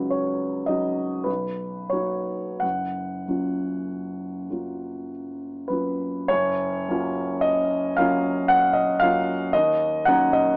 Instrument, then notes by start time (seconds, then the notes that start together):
grand piano
Already playing: C#2 F#3 C#4 D#4 F#4 B4
0.10 C#5
0.66 F#3 C#4 D#4 F#4 D#5
1.24 B1 B4
1.90 F#3 A#3 D#4 F#4 C#5
2.60 F#1 F#5
3.28 F#3 A#3 C#4 F4
4.50 F#3 A#3 C#4 F4
5.68 F#3 A#3 C#4 F4 B4
6.28 F#1 C#5
6.88 F#3 A#3 C#4 F4
7.41 D#5
7.97 F#3 A#3 C#4 F4 F5
8.48 F#5
8.73 D#5
9.00 F#3 A#3 C#4 F4 F5
9.53 D#2 D#5
10.05 F#3 A#3 C#4 D#4 F#5
10.33 D#5